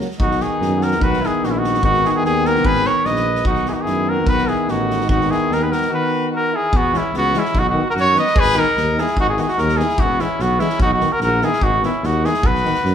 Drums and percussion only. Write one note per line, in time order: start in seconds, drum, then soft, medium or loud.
0.00 snare soft
0.10 snare soft
0.20 kick medium
0.31 snare soft
0.40 snare soft
0.61 snare soft
0.81 snare soft
0.91 snare soft
1.01 kick medium
1.13 snare soft
1.23 snare soft
1.43 snare soft
1.64 snare soft
1.74 snare soft
1.83 kick medium
1.94 snare soft
2.04 snare soft
2.25 snare soft
2.45 snare soft
2.56 snare soft
2.65 kick medium
2.75 snare soft
2.84 snare soft
3.05 snare soft
3.15 snare soft
3.35 snare soft
3.45 kick medium
3.55 snare soft
3.65 snare soft
3.86 snare soft
4.27 kick medium
4.37 snare soft
4.47 snare soft
4.68 snare soft
4.90 snare soft
5.00 snare soft
5.09 kick medium
5.21 snare soft
5.31 snare soft
5.51 snare soft
5.72 snare soft
5.81 snare soft
6.73 kick loud
6.93 snare soft
7.14 snare soft
7.34 snare soft
7.45 snare soft
7.55 kick medium
7.96 snare soft
8.15 snare soft
8.27 snare soft
8.36 kick loud
8.56 snare soft
8.77 snare soft
8.98 snare soft
9.07 snare soft
9.17 kick medium
9.37 snare soft
9.48 snare soft
9.57 snare soft
9.68 snare soft
9.79 snare soft
9.89 snare soft
9.98 kick medium
10.19 snare soft
10.39 snare soft
10.59 snare soft
10.69 snare soft
10.80 kick loud
11.00 snare soft
11.21 snare soft
11.41 snare soft
11.53 snare soft
11.61 kick medium
11.83 snare soft
12.03 snare soft
12.24 snare soft
12.34 snare soft
12.43 kick loud
12.55 snare soft
12.65 snare soft
12.74 snare soft
12.85 snare soft